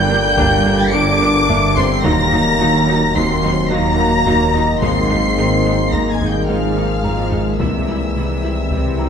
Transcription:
0.00 0.31 G1 medium
0.00 2.06 G1 medium
0.00 0.31 G2 medium
0.00 2.05 D3 medium
0.00 2.05 D3 loud
0.00 0.90 G3 loud
0.00 2.04 G3 loud
0.00 2.05 A#3 medium
0.00 1.17 F4 medium
0.00 2.05 G4 medium
0.00 4.82 A#4 medium
0.00 0.61 E5 medium
0.00 1.17 F5 medium
0.00 0.90 G5 medium
0.00 0.90 G6 loud
0.10 0.18 A#3 medium
0.10 0.18 D4 medium
0.38 0.86 G1 medium
0.38 0.87 G2 medium
0.38 0.46 A#3 medium
0.38 0.46 D4 medium
0.38 2.00 G4 medium
0.38 2.00 G5 medium
0.38 taiko medium
0.65 0.74 A#3 medium
0.65 0.73 D4 medium
0.65 taiko low soft
0.92 1.42 G1 medium
0.92 1.42 G2 medium
0.92 1.02 A#3 medium
0.92 1.76 D4 loud
0.92 1.01 D4 medium
0.92 1.75 D6 loud
0.92 1.76 D7 loud
1.21 1.29 A#3 medium
1.21 1.29 D4 medium
1.49 1.98 G1 medium
1.49 1.98 G2 medium
1.49 1.57 A#3 medium
1.49 1.57 D4 medium
1.49 3.12 E5 medium
1.49 taiko low medium
1.77 1.85 A#3 medium
1.77 2.04 C4 loud
1.77 1.85 D4 medium
1.77 2.04 C6 medium
1.77 2.04 C7 loud
1.77 taiko low medium
2.04 4.84 D#1 medium
2.04 2.53 D#2 medium
2.04 7.59 D#3 medium
2.04 7.60 D#3 medium
2.04 4.64 F#3 medium
2.04 2.13 F#3 medium
2.04 4.82 F#3 medium
2.04 3.16 A#3 medium
2.04 7.60 A#3 medium
2.04 2.13 D#4 medium
2.04 3.15 A#5 loud
2.04 3.13 A#6 loud
2.04 taiko loud
2.32 2.40 F#3 medium
2.32 2.40 D#4 medium
2.32 taiko low soft
2.60 3.09 D#2 medium
2.60 2.68 F#3 medium
2.60 2.68 D#4 medium
2.88 2.96 F#3 medium
2.88 2.96 D#4 medium
3.15 3.57 D#2 medium
3.15 3.64 D#2 medium
3.15 3.65 D#2 medium
3.15 3.24 F#3 medium
3.15 3.70 C4 medium
3.15 3.24 D#4 medium
3.15 3.71 C6 medium
3.15 3.71 C7 loud
3.15 taiko medium
3.43 3.52 F#3 medium
3.43 3.52 D#4 medium
3.43 taiko low soft
3.71 4.20 D#2 medium
3.71 3.80 F#3 medium
3.71 4.65 A#3 medium
3.71 3.79 D#4 medium
3.71 4.82 A#5 loud
3.71 4.82 A#6 loud
3.99 4.07 F#3 medium
3.99 4.07 D#4 medium
4.26 4.75 D#2 medium
4.26 4.76 D#2 medium
4.26 4.34 F#3 medium
4.26 4.35 D#4 medium
4.26 taiko low medium
4.54 4.63 F#3 medium
4.54 4.63 D#4 medium
4.54 6.16 D#5 medium
4.54 taiko low soft
4.81 5.31 G#1 medium
4.81 7.62 G#1 medium
4.81 5.31 G#1 medium
4.81 5.31 G#2 medium
4.81 7.55 G#3 medium
4.81 7.60 G#3 medium
4.81 4.91 G#3 medium
4.81 5.91 C4 medium
4.81 4.90 D#4 medium
4.81 7.60 G#4 medium
4.81 5.90 C6 medium
4.81 5.91 C7 loud
4.81 taiko medium
5.10 5.18 G#3 medium
5.10 5.18 D#4 soft
5.10 taiko low soft
5.37 5.86 G#1 medium
5.37 5.87 G#1 medium
5.37 5.87 G#2 medium
5.37 5.45 G#3 soft
5.37 5.45 D#4 medium
5.66 5.74 G#3 medium
5.66 5.74 D#4 medium
5.92 6.42 G#1 medium
5.92 6.42 G#2 medium
5.92 6.01 G#3 medium
5.92 6.11 A#3 medium
5.92 6.01 D#4 soft
5.92 6.11 A#5 medium
5.92 6.11 A#6 medium
5.92 taiko medium
6.12 6.30 G#3 medium
6.12 6.30 G#5 medium
6.12 6.30 G#6 medium
6.21 6.29 G#3 soft
6.21 6.29 D#4 soft
6.21 taiko low soft
6.30 6.48 G3 medium
6.30 6.49 G5 medium
6.30 6.48 G6 medium
6.48 6.97 G#1 medium
6.48 6.98 G#1 medium
6.48 6.98 G#2 medium
6.48 7.60 F3 medium
6.48 6.57 G#3 medium
6.48 6.57 D#4 soft
6.48 7.60 F5 medium
6.48 7.57 F6 medium
6.76 6.84 G#3 soft
6.76 6.85 D#4 soft
7.04 7.53 G#1 soft
7.04 7.53 G#2 medium
7.04 7.12 G#3 soft
7.04 7.12 D#4 soft
7.04 8.67 A#4 soft
7.04 8.67 A#5 soft
7.04 taiko low soft
7.32 7.40 G#3 soft
7.32 7.40 D#4 soft
7.32 taiko low soft
7.59 8.08 C2 soft
7.59 8.09 C2 soft
7.59 9.09 C2 medium
7.59 8.09 C3 soft
7.59 9.09 C3 medium
7.59 9.09 E3 soft
7.59 9.09 E3 medium
7.59 9.09 G3 soft
7.59 7.68 G3 soft
7.59 9.09 C4 medium
7.59 7.68 E4 soft
7.59 9.09 E4 medium
7.59 9.09 G4 medium
7.59 9.09 E5 soft
7.59 9.09 E6 medium
7.59 taiko medium
7.88 7.96 G3 soft
7.88 7.96 E4 soft
8.15 8.64 C2 soft
8.15 8.64 C3 soft
8.15 8.24 G3 soft
8.15 8.24 E4 soft
8.43 8.51 G3 soft
8.43 8.51 E4 soft
8.71 9.09 C2 soft
8.71 9.09 C3 soft
8.71 8.79 G3 soft
8.71 8.79 E4 soft
8.71 taiko medium
8.99 9.07 G3 soft
8.99 9.07 E4 soft
8.99 9.09 A#5 soft

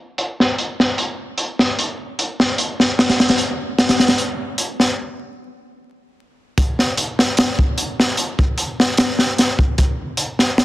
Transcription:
0.18 closed hi-hat medium
0.40 snare soft
0.58 closed hi-hat medium
0.80 snare soft
0.98 closed hi-hat medium
1.38 closed hi-hat medium
1.59 snare soft
1.79 closed hi-hat medium
2.19 closed hi-hat medium
2.40 snare medium
2.58 closed hi-hat medium
2.80 snare soft
2.99 snare medium
2.99 closed hi-hat medium
3.09 snare medium
3.09 closed hi-hat medium
3.20 snare medium
3.20 closed hi-hat medium
3.29 snare medium
3.29 closed hi-hat medium
3.38 closed hi-hat medium
3.78 snare medium
3.78 closed hi-hat medium
3.89 snare medium
3.89 closed hi-hat medium
4.00 snare medium
4.00 closed hi-hat medium
4.08 snare medium
4.08 closed hi-hat medium
4.18 closed hi-hat medium
4.58 closed hi-hat medium
4.80 snare soft
6.58 kick loud
6.58 closed hi-hat medium
6.79 snare soft
6.97 closed hi-hat medium
7.19 snare medium
7.37 snare loud
7.37 closed hi-hat medium
7.59 kick medium
7.78 closed hi-hat medium
8.00 snare medium
8.17 closed hi-hat medium
8.39 kick loud
8.58 closed hi-hat medium
8.80 snare medium
8.97 snare loud
8.97 closed hi-hat medium
9.19 snare soft
9.38 snare soft
9.38 closed hi-hat medium
9.59 kick medium
9.78 kick loud
9.78 closed hi-hat medium
10.17 closed hi-hat medium
10.39 snare soft
10.58 snare loud
10.58 closed hi-hat medium

